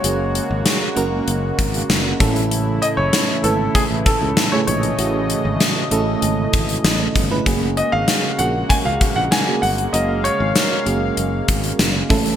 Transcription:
Already playing: C#3 G#3 A#3 C#4 F#4 G#4 A#4 C#5
0.03 F#1 A#3 C#4 F#4 G#4, closed hi-hat
0.35 closed hi-hat
0.51 G#1
0.66 snare, closed hi-hat
0.96 F#1 A#3 C#4 F#4 A#4, closed hi-hat
1.28 F#1, closed hi-hat
1.59 G#1, kick, closed hi-hat
1.74 closed hi-hat
1.89 F#1, snare, closed hi-hat
2.20 A1 A2 E3 A3 C#4 E4 A4, kick, closed hi-hat
2.36 closed hi-hat
2.51 closed hi-hat
2.82 D#5, closed hi-hat
2.97 F#1 C#5
3.13 snare, closed hi-hat
3.43 G#1 A3 C#4 E4 A4 B4, closed hi-hat
3.75 G#4, kick, closed hi-hat
3.91 A1
4.06 A4, kick, closed hi-hat
4.22 C#2
4.37 snare, closed hi-hat
4.52 A3 C#4 E4 G#4 C#5
4.67 A#1 A2 C#5 D#5, closed hi-hat
4.83 closed hi-hat
4.98 A1 A3 C#4 E4 F#4, closed hi-hat
5.30 closed hi-hat
5.45 G#1
5.60 snare, closed hi-hat
5.91 A1 A3 C#4 E4 A4, closed hi-hat
6.22 G#1, closed hi-hat
6.53 G#1, kick, closed hi-hat
6.69 closed hi-hat
6.84 A1, snare, closed hi-hat
7.15 G1, kick, closed hi-hat
7.30 A3 C#4 E4 B4
7.46 F#1 G#3 A#3 C#4 F#4 G#4, kick, closed hi-hat
7.77 D#5, closed hi-hat
7.92 G#1 F5
8.08 snare, closed hi-hat
8.39 A#1 A#3 C#4 F#4 G#4 F#5, closed hi-hat
8.69 G#5, kick, closed hi-hat
8.85 C#2 F5
9.01 kick, closed hi-hat
9.16 A#1 F#5
9.31 G#5, snare, closed hi-hat
9.47 A#3 C#4 F#4 G#4
9.62 G1 F#5, open hi-hat
9.78 closed hi-hat
9.93 F#1 A#3 C#4 F#4 A#4 D#5 F5, closed hi-hat
10.24 C#5, closed hi-hat
10.40 G#1
10.56 snare, closed hi-hat
10.86 F#1 A#3 C#4 F#4 G#4, closed hi-hat
11.17 F#1, closed hi-hat
11.48 G#1, kick, closed hi-hat
11.64 closed hi-hat
11.79 F#1, snare, closed hi-hat
12.09 A1 A2 E3 A3 C#4 E4 A4, kick, open hi-hat
12.26 closed hi-hat

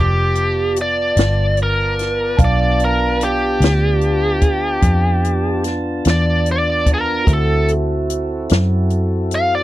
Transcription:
Already playing: F1 B3 F4 D5 F5 A5
0.00 G4
0.35 closed hi-hat
0.76 closed hi-hat
0.81 D5
1.17 G1, snare, closed hi-hat
1.57 closed hi-hat
1.63 A#4
1.99 snare, closed hi-hat
2.37 B1 B3 D5 F5 A5, kick, closed hi-hat
2.42 B3 D4 F4 D5 A5
2.80 closed hi-hat
2.85 A#4
3.21 G4, closed hi-hat
3.60 D2, snare, closed hi-hat
4.01 closed hi-hat
4.41 kick, closed hi-hat
4.82 F2, kick, closed hi-hat
5.25 closed hi-hat
5.64 snare, closed hi-hat
6.05 E2, snare, closed hi-hat
6.10 D5
6.46 closed hi-hat
6.52 D5
6.86 kick, closed hi-hat
6.94 A#4
7.24 D2 C4 E4 F#4 A4 C5 E5, kick, closed hi-hat
7.34 A4
7.68 closed hi-hat
8.10 closed hi-hat
8.49 F#2, snare, closed hi-hat
8.90 closed hi-hat
9.31 closed hi-hat
9.35 F5
9.55 D5

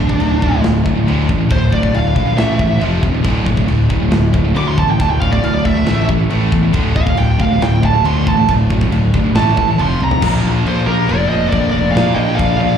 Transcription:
Already playing: D1 D2 A2 D3 A3 D4 F4
0.09 D2 A2, kick
0.19 D1 D2 A2, crash
0.42 D1 D2 A2, kick
0.54 D2 A2
0.63 D1 D2 A2, snare, crash
0.86 D1 D2 A2, kick
0.97 D2 A2
1.07 D2 A2 D3, crash
1.29 A1 D2 A2, kick
1.40 D2 A2
1.50 D1 D2 A2 D3 A3 F4 C5, kick, crash
1.72 D1 D2 A2 D5, kick
1.83 D2 A2, kick
1.94 D1 D2 A2 F5, crash
2.16 A#1 D2 A2, kick
2.27 D2 A2
2.38 A1 A2 E3 A3 E5, snare, crash
2.59 A1 A2 E3, kick
2.70 A2 E3
2.81 F1 F2 C3 F3, crash
3.03 D#1 F2 C3, kick
3.14 F2 C3
3.24 D1 D2 A2 D3 A3 F4, kick, crash
3.46 D2 A2, kick
3.57 D2 A2, kick
3.68 D1 D2 A2, crash
3.90 D1 D2 A2, kick
4.02 D2 A2
4.11 D1 D2 A2, snare, crash
4.33 D1 D2 A2, kick
4.45 D2 A2
4.55 D2 A2 D3 D6, crash
4.68 C6
4.77 A1 D2 A2 A5, kick
4.89 D2 A2 G5
4.99 D1 D2 A2 D3 A3 F4 A5, kick, crash
5.10 G5
5.20 D1 D2 A2 F5, kick
5.32 D2 A2 D5, kick
5.42 D1 D2 A2 F5, crash
5.55 D5
5.64 D2 A2 E5, kick
5.75 D2 A2
5.86 A1 A2 E3 A3, snare, crash
6.08 A1 A2 E3, kick
6.19 A2 E3
6.30 A1 A2 E3 A3, crash
6.51 E2 A2 E3, kick
6.63 A2 E3
6.73 D1 D2 A2 D3 A3, kick, crash
6.77 F4
6.95 D2 A2 F5, kick
7.07 D2 A2, kick
7.17 D1 D2 A2 G5, crash
7.39 D1 D2 A2 F5, kick
7.51 D2 A2
7.61 D1 D2 A2 G5, snare, crash
7.83 D1 D2 A2 A5, kick
7.93 D2 A2
8.05 D2 A2 D3 C6, crash
8.26 A1 D2 A2 A5, kick
8.37 D2 A2
8.48 D1 D2 A2 D3 A3 F4, kick, crash
8.70 D1 D2 A2, kick
8.81 D2 A2, kick
8.92 D1 D2 A2, crash
9.14 G1 D2 A2, kick
9.24 D2 A2
9.35 A1 A2 E3 A3 A5, snare, crash
9.57 A1 A2 E3, kick
9.68 A2 E3
9.78 F1 F2 C3 F3 C6, crash
10.00 C2 F2 C3 A#5, high tom
10.11 F2 C3, floor tom
10.21 A#1 A#2 F3 A#3 D4 F4, kick, crash, china
10.25 A#4
10.45 A#1
10.66 A#1 F4 C5, china
10.86 A#1 A#2 F3 A#3 G4 A#4
11.07 F1 A#2 F3 A#4 D5, china
11.12 A#3
11.29 F1 C5 D#5
11.49 A#1 A#4 D5, kick, china
11.70 F1 A#4 D5
11.92 A#1 A#2 D5 F5
11.96 F3 A#3 D4 F4 A#4, snare, china
12.15 A#1 D#5 G5
12.35 D5 F5
12.39 A#1, kick, china
12.57 A#1 A#3 D5 F5
12.62 A#2 F3

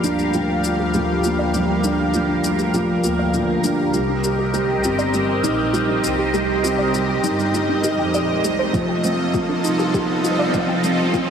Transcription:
Already playing: F3 G3 A#3 G4 A#4 F5, riser
0.04 D2 G3 D4, shaker
0.19 shaker
0.34 F3 F4, shaker
0.50 D4
0.64 F4, shaker
0.80 G4
0.94 F3 G4, shaker
1.24 A#3 F4, shaker
1.39 D5
1.54 F3, shaker
1.69 G5
1.84 G3 D4, shaker
2.14 F3 F4, shaker
2.29 D4
2.44 D2 F4, shaker
2.59 G4, shaker
2.74 F3 G4, shaker
3.04 D2 A#3 F4, shaker
3.19 D5
3.34 F3, shaker
3.49 G5
3.64 G3 D4, shaker
3.93 C2 G3 C4 F4 G4 D#5, shaker
4.09 D4
4.24 G4, shaker
4.39 G4
4.54 G3 G4, shaker
4.84 G1 C4 F4, shaker
4.99 D5, shaker
5.14 G3, shaker
5.29 G5
5.43 A#1 G3 D#4, shaker
5.73 G3 F4, shaker
5.89 D4
6.03 C2 G4, shaker
6.19 G4
6.33 G3 G4, shaker
6.63 C4 F4, shaker
6.79 D5
6.94 G3, shaker
7.09 G5
7.23 G1 G3 D#4, shaker
7.39 shaker
7.54 G3 F4, shaker
7.69 D4
7.83 D#4 G4, shaker
7.99 F2 G5
8.13 A#1 G4 D5, shaker
8.44 C2 G3 G4, shaker
8.59 C5
8.73 F1 F3 F4 A4, kick, shaker
8.89 G5
9.04 G3 C4, shaker
9.34 F3 F4, kick, shaker
9.49 D4
9.64 C2 D#4, shaker
9.79 G4, shaker
9.94 F3 G4, kick, shaker
10.24 F4, shaker
10.39 D5
10.54 F3, kick, shaker
10.69 G5
10.84 G3 C4, shaker
11.13 F3 F4, kick, shaker

